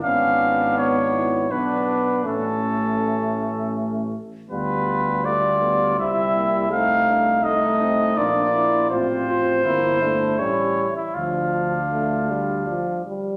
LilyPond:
<<
  \new Staff \with { instrumentName = "Trumpet" } { \time 3/4 \key a \phrygian \tempo 4 = 81 eis''4 cis''4 b'4 | a'2 r4 | b'4 d''4 e''4 | f''4 ees''4 d''4 |
c''2 cis''8. e'16 | f'2~ f'8 r8 | }
  \new Staff \with { instrumentName = "Flugelhorn" } { \time 3/4 \key a \phrygian d'2 d'4 | cis'2~ cis'8 r8 | f'4 f'4 e'4 | ees'4 ees'4 f'4 |
f'4 e'4 e'8 r8 | d'2~ d'8 r8 | }
  \new Staff \with { instrumentName = "Trombone" } { \time 3/4 \key a \phrygian cis'4 b8 e'8 d'4 | cis'2~ cis'8 r8 | b4 a8 b8 c'8 bes8 | c'8 d'8 ees'8 c'8 d'8 e'8 |
f'8 f'8 e'8 d'8 cis'8 r8 | d'2~ d'8 r8 | }
  \new Staff \with { instrumentName = "French horn" } { \time 3/4 \key a \phrygian b2 b4 | a2~ a8 r8 | g4 g4 g4 | a4 a4 bes4 |
c'4 bes8 a8 g8 r8 | f4 a8 g8 f8 g8 | }
  \new Staff \with { instrumentName = "Tuba" } { \clef bass \time 3/4 \key a \phrygian gis,,2 b,,4 | a,,2~ a,,8 r8 | d,2 c,4~ | c,2 bes,,4 |
a,,4 g,,4 a,,8 r8 | d,2~ d,8 r8 | }
>>